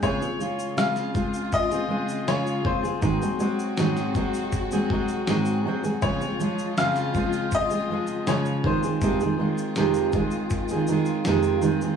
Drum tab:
SH |xxxxxxxxxx-xxx-x|xxxxxxxxxx-xxx-x|xxxxxxxxxx-xxx-x|xx-xxxxxxxxxxxxx|
SD |----oo------o---|----oo------o---|----oo------o---|----o-------o---|
BD |o-----o-o-----o-|o-----o-o-o-----|o-----o-o-----o-|o-----o-o-------|